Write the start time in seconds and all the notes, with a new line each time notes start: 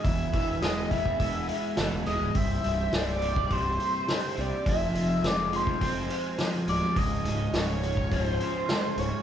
Already playing: G#4
0.04 E1 E2 E3 B3 E5, kick, open hi-hat
0.33 E1 E3, kick, open hi-hat
0.62 E1 G#3 D#5, snare, open hi-hat
0.89 E3 E5, kick, open hi-hat
1.06 kick
1.20 E1 B3, kick, open hi-hat
1.48 G#3, open hi-hat
1.77 F#1 E3, snare, open hi-hat
1.93 E1
2.06 D#1 G#3 D#5, open hi-hat
2.21 C#1
2.35 C1 C2 E3 C4 G4 E5, kick, open hi-hat
2.64 C1 G2, open hi-hat
2.92 C1 C3 D5, snare, open hi-hat
3.22 G2, open hi-hat
3.36 kick
3.50 C1 G3 C5, kick, open hi-hat
3.80 C3, open hi-hat
4.08 G2, snare, open hi-hat
4.37 C2 C3 D5, open hi-hat
4.66 F1 F2 F3 G#4 E5, kick, open hi-hat
4.94 F1 F3, open hi-hat
5.22 F1 G#3, snare, open hi-hat
5.26 D5
5.52 F3 C5, open hi-hat
5.67 kick
5.80 F1 C4, kick, open hi-hat
6.10 G#3, open hi-hat
6.38 F3, snare, open hi-hat
6.68 D1 G#3 D5, open hi-hat
6.96 C#1 C#2 C#4 D#5, kick, open hi-hat
7.25 C#1 G#2, open hi-hat
7.53 C#1 C#3 C#5, snare, open hi-hat
7.83 G#2, open hi-hat
7.97 kick
8.12 C#1 F3 C5, kick, open hi-hat
8.40 C#3, open hi-hat
8.69 G#2, snare, open hi-hat
8.97 C#1 C#3 C#5, open hi-hat